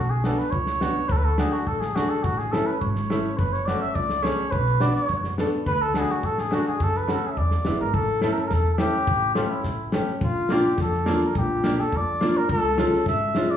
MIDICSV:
0, 0, Header, 1, 5, 480
1, 0, Start_track
1, 0, Tempo, 569801
1, 928, Time_signature, 2, 2, 24, 8
1, 11431, End_track
2, 0, Start_track
2, 0, Title_t, "Cornet"
2, 0, Program_c, 0, 56
2, 0, Note_on_c, 0, 66, 85
2, 86, Note_on_c, 0, 68, 79
2, 98, Note_off_c, 0, 66, 0
2, 207, Note_off_c, 0, 68, 0
2, 215, Note_on_c, 0, 69, 69
2, 325, Note_on_c, 0, 71, 81
2, 338, Note_off_c, 0, 69, 0
2, 427, Note_on_c, 0, 73, 98
2, 439, Note_off_c, 0, 71, 0
2, 913, Note_on_c, 0, 71, 104
2, 926, Note_off_c, 0, 73, 0
2, 943, Note_on_c, 0, 69, 80
2, 955, Note_off_c, 0, 71, 0
2, 987, Note_on_c, 0, 71, 100
2, 1000, Note_off_c, 0, 69, 0
2, 1048, Note_on_c, 0, 69, 74
2, 1061, Note_off_c, 0, 71, 0
2, 1172, Note_on_c, 0, 68, 75
2, 1185, Note_off_c, 0, 69, 0
2, 1285, Note_on_c, 0, 66, 81
2, 1298, Note_off_c, 0, 68, 0
2, 1407, Note_on_c, 0, 69, 82
2, 1420, Note_off_c, 0, 66, 0
2, 1520, Note_on_c, 0, 68, 84
2, 1532, Note_off_c, 0, 69, 0
2, 1647, Note_on_c, 0, 66, 97
2, 1660, Note_off_c, 0, 68, 0
2, 1762, Note_on_c, 0, 69, 79
2, 1775, Note_off_c, 0, 66, 0
2, 1877, Note_on_c, 0, 66, 88
2, 1890, Note_off_c, 0, 69, 0
2, 2006, Note_on_c, 0, 68, 76
2, 2019, Note_off_c, 0, 66, 0
2, 2120, Note_on_c, 0, 69, 89
2, 2133, Note_off_c, 0, 68, 0
2, 2244, Note_on_c, 0, 71, 79
2, 2257, Note_off_c, 0, 69, 0
2, 2357, Note_off_c, 0, 71, 0
2, 2362, Note_on_c, 0, 73, 81
2, 2843, Note_on_c, 0, 71, 94
2, 2855, Note_off_c, 0, 73, 0
2, 2972, Note_on_c, 0, 73, 87
2, 2985, Note_off_c, 0, 71, 0
2, 3081, Note_on_c, 0, 74, 82
2, 3093, Note_off_c, 0, 73, 0
2, 3206, Note_off_c, 0, 74, 0
2, 3215, Note_on_c, 0, 76, 88
2, 3325, Note_on_c, 0, 74, 94
2, 3338, Note_off_c, 0, 76, 0
2, 3561, Note_on_c, 0, 73, 104
2, 3574, Note_off_c, 0, 74, 0
2, 3801, Note_on_c, 0, 71, 97
2, 3814, Note_off_c, 0, 73, 0
2, 4051, Note_on_c, 0, 74, 87
2, 4064, Note_off_c, 0, 71, 0
2, 4167, Note_off_c, 0, 74, 0
2, 4172, Note_on_c, 0, 73, 82
2, 4507, Note_off_c, 0, 73, 0
2, 4776, Note_on_c, 0, 71, 121
2, 4901, Note_on_c, 0, 69, 97
2, 4913, Note_off_c, 0, 71, 0
2, 5013, Note_on_c, 0, 68, 94
2, 5025, Note_off_c, 0, 69, 0
2, 5146, Note_on_c, 0, 66, 85
2, 5159, Note_off_c, 0, 68, 0
2, 5263, Note_on_c, 0, 69, 90
2, 5275, Note_off_c, 0, 66, 0
2, 5385, Note_on_c, 0, 68, 81
2, 5398, Note_off_c, 0, 69, 0
2, 5510, Note_on_c, 0, 66, 97
2, 5523, Note_off_c, 0, 68, 0
2, 5622, Note_off_c, 0, 66, 0
2, 5626, Note_on_c, 0, 68, 84
2, 5752, Note_on_c, 0, 69, 94
2, 5765, Note_off_c, 0, 68, 0
2, 5872, Note_on_c, 0, 71, 83
2, 5885, Note_off_c, 0, 69, 0
2, 6005, Note_on_c, 0, 69, 83
2, 6018, Note_off_c, 0, 71, 0
2, 6122, Note_on_c, 0, 68, 74
2, 6134, Note_off_c, 0, 69, 0
2, 6148, Note_off_c, 0, 68, 0
2, 6153, Note_on_c, 0, 76, 70
2, 6211, Note_on_c, 0, 74, 88
2, 6224, Note_off_c, 0, 76, 0
2, 6572, Note_off_c, 0, 74, 0
2, 6577, Note_on_c, 0, 70, 91
2, 6688, Note_on_c, 0, 69, 116
2, 6701, Note_off_c, 0, 70, 0
2, 6931, Note_off_c, 0, 69, 0
2, 6937, Note_on_c, 0, 69, 79
2, 7011, Note_on_c, 0, 70, 78
2, 7023, Note_off_c, 0, 69, 0
2, 7078, Note_on_c, 0, 69, 74
2, 7091, Note_off_c, 0, 70, 0
2, 7139, Note_on_c, 0, 70, 84
2, 7152, Note_off_c, 0, 69, 0
2, 7187, Note_on_c, 0, 69, 94
2, 7200, Note_off_c, 0, 70, 0
2, 7355, Note_off_c, 0, 69, 0
2, 7360, Note_on_c, 0, 69, 59
2, 7397, Note_on_c, 0, 67, 116
2, 7409, Note_off_c, 0, 69, 0
2, 7868, Note_off_c, 0, 67, 0
2, 7873, Note_on_c, 0, 65, 79
2, 7996, Note_on_c, 0, 64, 70
2, 8009, Note_off_c, 0, 65, 0
2, 8363, Note_off_c, 0, 64, 0
2, 8622, Note_on_c, 0, 65, 91
2, 8868, Note_on_c, 0, 67, 88
2, 8881, Note_off_c, 0, 65, 0
2, 9099, Note_off_c, 0, 67, 0
2, 9109, Note_on_c, 0, 69, 78
2, 9434, Note_off_c, 0, 69, 0
2, 9470, Note_on_c, 0, 70, 81
2, 9584, Note_on_c, 0, 67, 103
2, 9597, Note_off_c, 0, 70, 0
2, 9942, Note_on_c, 0, 69, 82
2, 9955, Note_off_c, 0, 67, 0
2, 10080, Note_on_c, 0, 74, 99
2, 10093, Note_off_c, 0, 69, 0
2, 10419, Note_on_c, 0, 70, 90
2, 10432, Note_off_c, 0, 74, 0
2, 10531, Note_off_c, 0, 70, 0
2, 10536, Note_on_c, 0, 69, 105
2, 10754, Note_off_c, 0, 69, 0
2, 10783, Note_on_c, 0, 69, 92
2, 10998, Note_off_c, 0, 69, 0
2, 11015, Note_on_c, 0, 76, 98
2, 11378, Note_on_c, 0, 74, 93
2, 11391, Note_off_c, 0, 76, 0
2, 11431, Note_off_c, 0, 74, 0
2, 11431, End_track
3, 0, Start_track
3, 0, Title_t, "Upright piano"
3, 0, Program_c, 1, 0
3, 207, Note_on_c, 1, 59, 56
3, 214, Note_on_c, 1, 62, 58
3, 214, Note_on_c, 1, 66, 61
3, 328, Note_off_c, 1, 59, 0
3, 331, Note_off_c, 1, 62, 0
3, 331, Note_off_c, 1, 66, 0
3, 684, Note_on_c, 1, 59, 60
3, 687, Note_on_c, 1, 62, 51
3, 695, Note_on_c, 1, 66, 72
3, 806, Note_off_c, 1, 59, 0
3, 808, Note_off_c, 1, 62, 0
3, 812, Note_off_c, 1, 66, 0
3, 1162, Note_on_c, 1, 57, 61
3, 1167, Note_on_c, 1, 62, 62
3, 1174, Note_on_c, 1, 66, 70
3, 1286, Note_off_c, 1, 57, 0
3, 1288, Note_off_c, 1, 62, 0
3, 1292, Note_off_c, 1, 66, 0
3, 1646, Note_on_c, 1, 57, 58
3, 1648, Note_on_c, 1, 62, 60
3, 1651, Note_on_c, 1, 68, 70
3, 1768, Note_off_c, 1, 57, 0
3, 1769, Note_off_c, 1, 62, 0
3, 1771, Note_off_c, 1, 68, 0
3, 2127, Note_on_c, 1, 57, 53
3, 2128, Note_on_c, 1, 61, 53
3, 2138, Note_on_c, 1, 64, 66
3, 2249, Note_off_c, 1, 57, 0
3, 2249, Note_off_c, 1, 61, 0
3, 2254, Note_off_c, 1, 64, 0
3, 2610, Note_on_c, 1, 57, 56
3, 2614, Note_on_c, 1, 61, 50
3, 2622, Note_on_c, 1, 64, 72
3, 2731, Note_off_c, 1, 57, 0
3, 2732, Note_off_c, 1, 61, 0
3, 2737, Note_off_c, 1, 64, 0
3, 3097, Note_on_c, 1, 57, 57
3, 3104, Note_on_c, 1, 61, 58
3, 3107, Note_on_c, 1, 66, 66
3, 3214, Note_off_c, 1, 57, 0
3, 3218, Note_off_c, 1, 61, 0
3, 3219, Note_off_c, 1, 66, 0
3, 3558, Note_on_c, 1, 57, 66
3, 3571, Note_on_c, 1, 61, 62
3, 3574, Note_on_c, 1, 68, 74
3, 3685, Note_off_c, 1, 57, 0
3, 3691, Note_off_c, 1, 61, 0
3, 3693, Note_off_c, 1, 68, 0
3, 4047, Note_on_c, 1, 59, 61
3, 4052, Note_on_c, 1, 62, 58
3, 4054, Note_on_c, 1, 66, 71
3, 4170, Note_off_c, 1, 59, 0
3, 4172, Note_off_c, 1, 62, 0
3, 4173, Note_off_c, 1, 66, 0
3, 4532, Note_on_c, 1, 59, 65
3, 4544, Note_on_c, 1, 62, 51
3, 4549, Note_on_c, 1, 69, 67
3, 4652, Note_off_c, 1, 59, 0
3, 4658, Note_off_c, 1, 62, 0
3, 4661, Note_off_c, 1, 69, 0
3, 5012, Note_on_c, 1, 57, 63
3, 5018, Note_on_c, 1, 62, 55
3, 5025, Note_on_c, 1, 66, 75
3, 5132, Note_off_c, 1, 57, 0
3, 5136, Note_off_c, 1, 62, 0
3, 5139, Note_off_c, 1, 66, 0
3, 5482, Note_on_c, 1, 57, 57
3, 5488, Note_on_c, 1, 62, 59
3, 5494, Note_on_c, 1, 66, 66
3, 5608, Note_off_c, 1, 57, 0
3, 5611, Note_off_c, 1, 62, 0
3, 5614, Note_off_c, 1, 66, 0
3, 5961, Note_on_c, 1, 57, 52
3, 5966, Note_on_c, 1, 61, 50
3, 5975, Note_on_c, 1, 66, 64
3, 6087, Note_off_c, 1, 57, 0
3, 6090, Note_off_c, 1, 61, 0
3, 6094, Note_off_c, 1, 66, 0
3, 6440, Note_on_c, 1, 56, 59
3, 6449, Note_on_c, 1, 59, 48
3, 6455, Note_on_c, 1, 64, 63
3, 6567, Note_off_c, 1, 56, 0
3, 6571, Note_off_c, 1, 59, 0
3, 6574, Note_off_c, 1, 64, 0
3, 6922, Note_on_c, 1, 57, 67
3, 6923, Note_on_c, 1, 61, 52
3, 6935, Note_on_c, 1, 64, 73
3, 7048, Note_off_c, 1, 57, 0
3, 7048, Note_off_c, 1, 61, 0
3, 7054, Note_off_c, 1, 64, 0
3, 7396, Note_on_c, 1, 57, 59
3, 7399, Note_on_c, 1, 61, 55
3, 7404, Note_on_c, 1, 64, 63
3, 7524, Note_off_c, 1, 57, 0
3, 7525, Note_off_c, 1, 61, 0
3, 7528, Note_off_c, 1, 64, 0
3, 7878, Note_on_c, 1, 57, 65
3, 7881, Note_on_c, 1, 61, 58
3, 7890, Note_on_c, 1, 67, 66
3, 8005, Note_off_c, 1, 57, 0
3, 8006, Note_off_c, 1, 61, 0
3, 8011, Note_off_c, 1, 67, 0
3, 8364, Note_on_c, 1, 57, 65
3, 8370, Note_on_c, 1, 61, 62
3, 8373, Note_on_c, 1, 67, 70
3, 8487, Note_off_c, 1, 57, 0
3, 8490, Note_off_c, 1, 61, 0
3, 8492, Note_off_c, 1, 67, 0
3, 8846, Note_on_c, 1, 58, 64
3, 8852, Note_on_c, 1, 62, 55
3, 8862, Note_on_c, 1, 65, 73
3, 8968, Note_off_c, 1, 58, 0
3, 8971, Note_off_c, 1, 62, 0
3, 8976, Note_off_c, 1, 65, 0
3, 9318, Note_on_c, 1, 58, 70
3, 9322, Note_on_c, 1, 62, 56
3, 9332, Note_on_c, 1, 65, 65
3, 9443, Note_off_c, 1, 58, 0
3, 9445, Note_off_c, 1, 62, 0
3, 9450, Note_off_c, 1, 65, 0
3, 9803, Note_on_c, 1, 58, 67
3, 9811, Note_on_c, 1, 62, 57
3, 9814, Note_on_c, 1, 67, 70
3, 9925, Note_off_c, 1, 58, 0
3, 9929, Note_off_c, 1, 62, 0
3, 9931, Note_off_c, 1, 67, 0
3, 10284, Note_on_c, 1, 58, 67
3, 10285, Note_on_c, 1, 62, 60
3, 10298, Note_on_c, 1, 65, 65
3, 10405, Note_off_c, 1, 58, 0
3, 10406, Note_off_c, 1, 62, 0
3, 10412, Note_off_c, 1, 65, 0
3, 10760, Note_on_c, 1, 56, 59
3, 10765, Note_on_c, 1, 61, 60
3, 10768, Note_on_c, 1, 65, 68
3, 10882, Note_off_c, 1, 56, 0
3, 10885, Note_off_c, 1, 61, 0
3, 10887, Note_off_c, 1, 65, 0
3, 11247, Note_on_c, 1, 56, 66
3, 11256, Note_on_c, 1, 61, 58
3, 11262, Note_on_c, 1, 65, 65
3, 11366, Note_off_c, 1, 56, 0
3, 11370, Note_off_c, 1, 61, 0
3, 11373, Note_off_c, 1, 65, 0
3, 11431, End_track
4, 0, Start_track
4, 0, Title_t, "Upright bass"
4, 0, Program_c, 2, 32
4, 0, Note_on_c, 2, 35, 84
4, 251, Note_off_c, 2, 35, 0
4, 443, Note_on_c, 2, 37, 86
4, 733, Note_off_c, 2, 37, 0
4, 922, Note_on_c, 2, 38, 99
4, 1212, Note_off_c, 2, 38, 0
4, 1405, Note_on_c, 2, 33, 83
4, 1694, Note_off_c, 2, 33, 0
4, 1891, Note_on_c, 2, 33, 102
4, 2179, Note_off_c, 2, 33, 0
4, 2370, Note_on_c, 2, 32, 89
4, 2658, Note_off_c, 2, 32, 0
4, 2854, Note_on_c, 2, 30, 92
4, 3141, Note_off_c, 2, 30, 0
4, 3332, Note_on_c, 2, 37, 85
4, 3621, Note_off_c, 2, 37, 0
4, 3809, Note_on_c, 2, 35, 97
4, 4098, Note_off_c, 2, 35, 0
4, 4287, Note_on_c, 2, 42, 92
4, 4577, Note_off_c, 2, 42, 0
4, 4774, Note_on_c, 2, 38, 98
4, 5062, Note_off_c, 2, 38, 0
4, 5249, Note_on_c, 2, 33, 80
4, 5539, Note_off_c, 2, 33, 0
4, 5729, Note_on_c, 2, 42, 100
4, 6018, Note_off_c, 2, 42, 0
4, 6209, Note_on_c, 2, 40, 77
4, 6354, Note_off_c, 2, 40, 0
4, 6454, Note_on_c, 2, 30, 69
4, 6562, Note_off_c, 2, 30, 0
4, 6571, Note_on_c, 2, 32, 72
4, 6680, Note_off_c, 2, 32, 0
4, 6687, Note_on_c, 2, 33, 95
4, 6977, Note_off_c, 2, 33, 0
4, 7167, Note_on_c, 2, 40, 80
4, 7457, Note_off_c, 2, 40, 0
4, 7646, Note_on_c, 2, 33, 97
4, 7935, Note_off_c, 2, 33, 0
4, 8124, Note_on_c, 2, 33, 78
4, 8414, Note_off_c, 2, 33, 0
4, 8604, Note_on_c, 2, 34, 103
4, 8893, Note_off_c, 2, 34, 0
4, 9083, Note_on_c, 2, 41, 91
4, 9373, Note_off_c, 2, 41, 0
4, 9565, Note_on_c, 2, 34, 104
4, 9853, Note_off_c, 2, 34, 0
4, 10044, Note_on_c, 2, 41, 85
4, 10332, Note_off_c, 2, 41, 0
4, 10524, Note_on_c, 2, 37, 110
4, 10812, Note_off_c, 2, 37, 0
4, 11003, Note_on_c, 2, 32, 77
4, 11291, Note_off_c, 2, 32, 0
4, 11431, End_track
5, 0, Start_track
5, 0, Title_t, "Drums"
5, 201, Note_on_c, 9, 38, 74
5, 285, Note_off_c, 9, 38, 0
5, 329, Note_on_c, 9, 38, 26
5, 413, Note_off_c, 9, 38, 0
5, 442, Note_on_c, 9, 36, 66
5, 526, Note_off_c, 9, 36, 0
5, 560, Note_on_c, 9, 38, 56
5, 644, Note_off_c, 9, 38, 0
5, 684, Note_on_c, 9, 38, 81
5, 768, Note_off_c, 9, 38, 0
5, 921, Note_on_c, 9, 38, 25
5, 922, Note_on_c, 9, 36, 85
5, 1005, Note_off_c, 9, 38, 0
5, 1006, Note_off_c, 9, 36, 0
5, 1162, Note_on_c, 9, 38, 85
5, 1247, Note_off_c, 9, 38, 0
5, 1284, Note_on_c, 9, 38, 23
5, 1368, Note_off_c, 9, 38, 0
5, 1405, Note_on_c, 9, 36, 57
5, 1489, Note_off_c, 9, 36, 0
5, 1532, Note_on_c, 9, 38, 56
5, 1616, Note_off_c, 9, 38, 0
5, 1651, Note_on_c, 9, 38, 84
5, 1735, Note_off_c, 9, 38, 0
5, 1888, Note_on_c, 9, 36, 88
5, 1972, Note_off_c, 9, 36, 0
5, 2009, Note_on_c, 9, 38, 21
5, 2093, Note_off_c, 9, 38, 0
5, 2134, Note_on_c, 9, 38, 79
5, 2219, Note_off_c, 9, 38, 0
5, 2371, Note_on_c, 9, 36, 52
5, 2455, Note_off_c, 9, 36, 0
5, 2490, Note_on_c, 9, 38, 53
5, 2574, Note_off_c, 9, 38, 0
5, 2615, Note_on_c, 9, 38, 88
5, 2700, Note_off_c, 9, 38, 0
5, 2853, Note_on_c, 9, 36, 75
5, 2856, Note_on_c, 9, 38, 28
5, 2937, Note_off_c, 9, 36, 0
5, 2940, Note_off_c, 9, 38, 0
5, 2977, Note_on_c, 9, 38, 22
5, 3061, Note_off_c, 9, 38, 0
5, 3097, Note_on_c, 9, 38, 75
5, 3181, Note_off_c, 9, 38, 0
5, 3331, Note_on_c, 9, 36, 60
5, 3415, Note_off_c, 9, 36, 0
5, 3449, Note_on_c, 9, 38, 56
5, 3534, Note_off_c, 9, 38, 0
5, 3576, Note_on_c, 9, 38, 81
5, 3661, Note_off_c, 9, 38, 0
5, 3811, Note_on_c, 9, 36, 86
5, 3895, Note_off_c, 9, 36, 0
5, 3930, Note_on_c, 9, 38, 21
5, 4014, Note_off_c, 9, 38, 0
5, 4047, Note_on_c, 9, 38, 75
5, 4131, Note_off_c, 9, 38, 0
5, 4170, Note_on_c, 9, 38, 24
5, 4254, Note_off_c, 9, 38, 0
5, 4287, Note_on_c, 9, 38, 23
5, 4289, Note_on_c, 9, 36, 57
5, 4371, Note_off_c, 9, 38, 0
5, 4373, Note_off_c, 9, 36, 0
5, 4414, Note_on_c, 9, 38, 54
5, 4499, Note_off_c, 9, 38, 0
5, 4534, Note_on_c, 9, 38, 79
5, 4618, Note_off_c, 9, 38, 0
5, 4771, Note_on_c, 9, 36, 84
5, 4855, Note_off_c, 9, 36, 0
5, 5007, Note_on_c, 9, 38, 75
5, 5091, Note_off_c, 9, 38, 0
5, 5134, Note_on_c, 9, 38, 26
5, 5219, Note_off_c, 9, 38, 0
5, 5251, Note_on_c, 9, 36, 58
5, 5335, Note_off_c, 9, 36, 0
5, 5375, Note_on_c, 9, 38, 58
5, 5460, Note_off_c, 9, 38, 0
5, 5491, Note_on_c, 9, 38, 73
5, 5575, Note_off_c, 9, 38, 0
5, 5731, Note_on_c, 9, 36, 87
5, 5815, Note_off_c, 9, 36, 0
5, 5855, Note_on_c, 9, 38, 23
5, 5939, Note_off_c, 9, 38, 0
5, 5968, Note_on_c, 9, 38, 77
5, 6052, Note_off_c, 9, 38, 0
5, 6209, Note_on_c, 9, 36, 54
5, 6294, Note_off_c, 9, 36, 0
5, 6327, Note_on_c, 9, 38, 52
5, 6411, Note_off_c, 9, 38, 0
5, 6443, Note_on_c, 9, 38, 88
5, 6527, Note_off_c, 9, 38, 0
5, 6687, Note_on_c, 9, 36, 92
5, 6771, Note_off_c, 9, 36, 0
5, 6919, Note_on_c, 9, 38, 73
5, 7004, Note_off_c, 9, 38, 0
5, 7163, Note_on_c, 9, 38, 61
5, 7166, Note_on_c, 9, 36, 53
5, 7247, Note_off_c, 9, 38, 0
5, 7250, Note_off_c, 9, 36, 0
5, 7398, Note_on_c, 9, 38, 93
5, 7483, Note_off_c, 9, 38, 0
5, 7643, Note_on_c, 9, 36, 96
5, 7728, Note_off_c, 9, 36, 0
5, 7878, Note_on_c, 9, 38, 74
5, 7962, Note_off_c, 9, 38, 0
5, 8122, Note_on_c, 9, 38, 56
5, 8124, Note_on_c, 9, 36, 59
5, 8206, Note_off_c, 9, 38, 0
5, 8208, Note_off_c, 9, 36, 0
5, 8359, Note_on_c, 9, 38, 95
5, 8444, Note_off_c, 9, 38, 0
5, 8598, Note_on_c, 9, 38, 26
5, 8603, Note_on_c, 9, 36, 91
5, 8683, Note_off_c, 9, 38, 0
5, 8687, Note_off_c, 9, 36, 0
5, 8835, Note_on_c, 9, 38, 77
5, 8919, Note_off_c, 9, 38, 0
5, 9077, Note_on_c, 9, 38, 57
5, 9081, Note_on_c, 9, 36, 68
5, 9161, Note_off_c, 9, 38, 0
5, 9165, Note_off_c, 9, 36, 0
5, 9198, Note_on_c, 9, 38, 23
5, 9282, Note_off_c, 9, 38, 0
5, 9319, Note_on_c, 9, 38, 89
5, 9403, Note_off_c, 9, 38, 0
5, 9438, Note_on_c, 9, 38, 27
5, 9522, Note_off_c, 9, 38, 0
5, 9564, Note_on_c, 9, 36, 83
5, 9648, Note_off_c, 9, 36, 0
5, 9803, Note_on_c, 9, 38, 83
5, 9887, Note_off_c, 9, 38, 0
5, 9929, Note_on_c, 9, 38, 23
5, 10014, Note_off_c, 9, 38, 0
5, 10045, Note_on_c, 9, 36, 55
5, 10130, Note_off_c, 9, 36, 0
5, 10287, Note_on_c, 9, 38, 83
5, 10372, Note_off_c, 9, 38, 0
5, 10524, Note_on_c, 9, 36, 81
5, 10609, Note_off_c, 9, 36, 0
5, 10765, Note_on_c, 9, 38, 91
5, 10849, Note_off_c, 9, 38, 0
5, 10888, Note_on_c, 9, 38, 28
5, 10973, Note_off_c, 9, 38, 0
5, 11003, Note_on_c, 9, 36, 64
5, 11010, Note_on_c, 9, 38, 50
5, 11087, Note_off_c, 9, 36, 0
5, 11094, Note_off_c, 9, 38, 0
5, 11243, Note_on_c, 9, 38, 86
5, 11327, Note_off_c, 9, 38, 0
5, 11431, End_track
0, 0, End_of_file